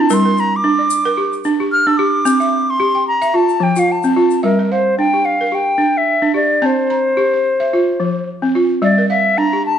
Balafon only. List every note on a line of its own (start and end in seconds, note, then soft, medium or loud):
0.00 0.23 D4 medium
0.10 0.37 G3 medium
0.10 0.24 A#4 medium
0.25 0.64 A#4 medium
0.64 0.91 D4 medium
0.79 1.18 D5 medium
1.05 1.33 A#4 medium
1.17 1.59 G4 medium
1.45 1.72 D4 medium
1.60 1.98 G4 medium
1.87 2.14 D4 medium
1.99 2.41 G4 medium
2.25 2.53 C4 medium
2.40 2.80 E5 medium
2.80 3.07 G4 medium
2.95 3.34 G5 medium
3.22 3.34 E5 medium
3.34 3.75 F4 medium
3.60 3.88 F3 medium
3.76 4.15 F4 medium
4.04 4.31 C4 medium
4.16 4.59 F4 medium
4.43 4.71 G3 medium
4.43 4.86 E5 medium
4.59 4.98 A#4 soft
4.72 5.14 F5 medium
4.99 5.26 D4 medium
5.14 5.51 G4 soft
5.41 5.68 A#4 medium
5.52 5.95 G4 soft
5.78 6.07 D4 medium
6.22 6.50 D4 medium
6.34 6.77 G4 medium
6.62 6.90 C4 medium
6.62 7.05 A5 medium
6.90 7.33 A#5 medium
7.17 7.45 G4 medium
7.33 7.73 C5 soft
7.60 7.72 E5 medium
7.73 8.16 F4 medium
8.00 8.27 F3 medium
8.42 8.70 C4 medium
8.55 8.98 F4 medium
8.82 9.10 G3 medium
8.82 9.25 E5 medium
8.98 9.38 A#4 medium
9.10 9.53 F5 medium
9.38 9.65 D4 medium
9.53 9.79 G4 soft